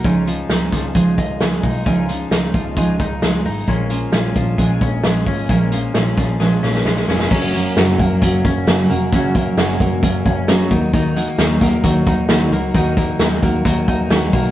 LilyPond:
<<
  \new Staff \with { instrumentName = "Steel-string acoustic guitar" } { \time 4/4 \key fis \major \tempo 4 = 132 <cis eis gis dis' eis'>8 <gis dis' eis'>8 <eis gis dis' eis'>8 <gis dis' eis'>8 <cis eis gis dis' eis'>8 <gis dis' eis'>8 <eis gis dis' eis'>8 <gis dis' eis'>8 | <cis eis gis dis' eis'>8 <gis dis' eis'>8 <eis gis dis' eis'>8 <gis dis' eis'>8 <cis eis gis dis' eis'>8 <gis dis' eis'>8 <eis gis dis' eis'>8 <gis dis' eis'>8 | <ais, eis gis cis' eis'>8 <gis cis' eis'>8 <eis gis cis' eis'>8 <gis cis' eis'>8 <ais, eis gis cis' eis'>8 <gis cis' eis'>8 <eis gis cis' eis'>8 <gis cis' eis'>8 | <ais, eis gis cis' eis'>8 <gis cis' eis'>8 <eis gis cis' eis'>8 <gis cis' eis'>8 <ais, eis gis cis' eis'>8 <gis cis' eis'>8 <eis gis cis' eis'>8 <gis cis' eis'>8 |
<fis, cis fis ais cis' fis'>8 <fis ais cis' fis'>8 <fis, cis fis ais cis' fis'>8 <fis ais cis' fis'>8 <fis ais cis' fis'>8 <fis ais cis' fis'>8 <fis, cis fis ais cis' fis'>8 <fis ais cis' fis'>8 | <fis, cis fis ais cis' fis'>8 <fis ais cis' fis'>8 <fis, cis fis ais cis' fis'>8 <fis ais cis' fis'>8 <fis ais cis' fis'>8 <fis ais cis' fis'>8 <fis, cis fis ais cis' fis'>8 <ais dis' fis'>8 | <dis ais dis' fis'>8 <ais dis' fis'>8 <dis ais dis' fis'>8 <ais dis' fis'>8 <dis ais dis' fis'>8 <ais dis' fis'>8 <dis ais dis' fis'>8 <ais dis' fis'>8 | <dis ais dis' fis'>8 <ais dis'>8 <dis ais dis' fis'>8 <ais dis' fis'>8 <dis ais dis' fis'>8 <ais dis' fis'>8 <dis ais dis' fis'>8 <ais dis' fis'>8 | }
  \new Staff \with { instrumentName = "Clean electric guitar" } { \clef bass \time 4/4 \key fis \major <cis dis'>8 eis8 dis'8 eis8 gis8 dis'8 gis8 dis'8 | <cis dis'>8 eis8 dis'8 eis8 gis8 dis'8 gis8 dis'8 | <ais, cis'>8 eis8 cis'8 eis8 gis8 cis'8 gis8 cis'8 | <ais, cis'>8 eis8 cis'8 eis8 gis8 cis'8 gis8 cis'8 |
<fis, cis'>8 ais8 fis8 ais8 cis8 cis'8 fis8 ais8 | <fis, cis'>8 ais8 fis8 ais8 cis8 cis'8 fis8 dis8 | <dis dis'>8 gis16 ais16 fis8 ais8 fis8 dis'8 fis8 ais8 | <dis dis'>8 ais8 fis8 ais8 fis8 dis'8 fis8 ais8 | }
  \new Staff \with { instrumentName = "Picked electric bass" } { \clef bass \time 4/4 \key fis \major cis,4 cis,8 cis,8 cis,8 cis,8 cis,8 b,,8 | cis,4 cis,8 cis,8 cis,8 cis,8 cis,8 gis,,8 | ais,,4 ais,,8 ais,,8 ais,,8 ais,,8 ais,,8 gis,,8 | ais,,4 ais,,8 ais,,8 ais,,8 ais,,8 ais,,8 eis,,8 |
fis,,4 fis,,8 fis,,8 fis,,8 fis,,8 fis,,8 eis,,8 | fis,,4 fis,,8 fis,,8 fis,,8 fis,,8 fis,,8 dis,8~ | dis,4 dis,8 dis,8 dis,8 dis,8 dis,8 cis,8 | dis,4 dis,8 dis,8 dis,8 dis,8 dis,8 b,,8 | }
  \new DrumStaff \with { instrumentName = "Drums" } \drummode { \time 4/4 <hh bd>8 hh8 <hh sn>8 <hh bd sn>8 <hh bd>8 <hh bd>8 <hh sn>8 <hho bd>8 | <hh bd>8 hh8 <hh sn>8 <hh bd>8 <hh bd>8 <hh bd>8 <hh sn>8 hho8 | <hh bd>8 hh8 <hh sn>8 <hh bd>8 <hh bd>8 <hh bd>8 <hh sn>8 <hho bd>8 | <hh bd>8 hh8 <hh sn>8 <hh bd sn>8 sn8 sn16 sn16 sn16 sn16 sn16 sn16 |
<cymc bd>8 hh8 <hh sn>8 <hh bd>8 <hh bd>8 <hh bd>8 <hh sn>8 hh8 | <hh bd>8 <hh bd>8 <hh sn>8 <hh bd>8 <hh bd>8 <hh bd>8 <hh sn>8 <hh bd>8 | <hh bd>8 hh8 <hh sn>8 <hh bd sn>8 <hh bd>8 <hh bd>8 <hh sn>8 hh8 | <hh bd>8 <hh bd>8 <hh sn>8 <hh bd>8 <hh bd>8 <hh bd>8 <hh sn>8 <hho bd>8 | }
>>